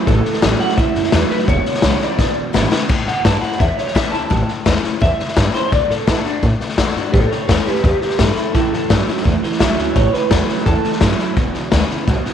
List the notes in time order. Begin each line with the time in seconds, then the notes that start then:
0.07 A1 A2 E3 A4, kick, snare
0.25 snare
0.33 snare
0.42 A1 A2 E3 F#3 A3 C#4 E4, snare, hi-hat pedal
0.59 A2 F#3 F#5, snare
0.69 snare
0.77 E2 A2 E3 E5, kick, snare
0.95 F#2, snare
1.04 snare
1.12 E2 A2 E3 F#3 A3 C#4 E4, snare, hi-hat pedal
1.30 A2 F#3 C#4 E4 B4, snare
1.39 snare
1.48 E1 E2 B2 C#5, kick, snare
1.65 muted upright bass stroke, snare
1.74 snare
1.82 B1 E2 C#3 D3 G#3 B3 E4, snare, hi-hat pedal
2.01 E2 C#3 B3 E4 D5, muted upright bass stroke, snare
2.19 D2 E2 B2, kick, snare
2.37 B1
2.53 G#1 E2 C#3 D3 G#3 B3 E4, snare, hi-hat pedal
2.71 E2 C#3 B3 E4, snare
2.89 A1 A2, kick, snare, crash
3.06 E2 F#5, snare
3.25 G2 E3 A3 C#4 E4 A5, kick, snare, hi-hat pedal
3.41 C#4 E4 F#5, muted upright bass stroke, snare
3.52 snare
3.59 E2 E5, kick, snare
3.77 C#5, muted upright bass stroke, snare
3.87 snare
3.95 C#2 E3 A3 C#4 E4 E5, kick, snare, hi-hat pedal
4.12 D2 C#4 E4 A5, snare
4.30 A1 A2, kick, snare
4.48 muted upright bass stroke, snare
4.66 E2 E3 A3 C#4 E4, kick, snare, hi-hat pedal
4.83 C#4 E4, muted upright bass stroke, snare
5.01 E2 E5, kick, snare
5.19 muted upright bass stroke, snare
5.28 snare
5.36 G2 E3 A3 C#4 E4, kick, snare, hi-hat pedal
5.54 C#4 E4 C5, muted upright bass stroke, snare
5.72 D2 D3 D5, kick, snare
5.90 A2 A4, snare
6.07 B2 D3 A3 D4 E4 F#4, kick, snare, hi-hat pedal
6.25 D4 F#4, muted upright bass stroke, snare
6.43 A2, kick, snare
6.60 muted upright bass stroke, snare
6.69 snare
6.78 F#2 D3 A3 D4 F#4, kick, snare, hi-hat pedal
6.95 G2 D4 F#4, snare
7.12 A1 A2 A4 C#5, kick, snare
7.29 A4 C#5, muted upright bass stroke, snare
7.48 E2 E3 A3 C#4 A4 C#5, kick, snare, hi-hat pedal
7.52 E4
7.66 C#4 E4 G4 B4, muted upright bass stroke, snare
7.76 snare
7.83 E2 G4 B4, kick, snare
8.00 G4 B4, muted upright bass stroke, snare
8.10 snare
8.18 G2 E3 A3 C#4 E4 A4, kick, snare, hi-hat pedal
8.35 C#4 E4 A4, muted upright bass stroke, snare
8.53 A1 A2 E3 E4 A4, kick, snare
8.72 E2 A2 E3 A4, snare
8.90 G2 A2 E3 F#3 A3 C#4 E4, kick, snare, hi-hat pedal
9.07 A2 F#3 C#4 E4, muted upright bass stroke, snare
9.17 snare
9.24 E2 A2 E3, kick, snare
9.43 A2 E3, muted upright bass stroke, snare
9.52 snare
9.59 C#2 A2 E3 F#3 A3 C#4 E4 E5, kick, snare, hi-hat pedal
9.78 D2 A2 F#3 C#4 E4, snare
9.95 A1 A2 E3 C#5, kick, snare
10.13 A2 E3 B4, muted upright bass stroke, snare
10.31 E2 A2 E3 F#3 A3 C#4 E4 A4, kick, snare, hi-hat pedal
10.48 A2 F#3 C#4 E4 B4, muted upright bass stroke, snare
10.58 snare
10.66 E2 A2 E3 A4, kick, snare
10.84 A2 E3, muted upright bass stroke, snare
10.92 snare
11.01 G2 A2 E3 F#3 A3 C#4 E4, kick, snare, hi-hat pedal
11.19 A2 F#3 C#4 E4, snare
11.36 E1 E2 B2, kick, snare
11.54 B1 E2 B2, snare
11.72 D2 E2 C#3 D3 G#3 B3 E4, kick, snare, hi-hat pedal
11.90 E2 C#3 B3 E4, muted upright bass stroke, snare
12.07 B1 E2 B2, kick, snare
12.25 E2 B2, muted upright bass stroke, snare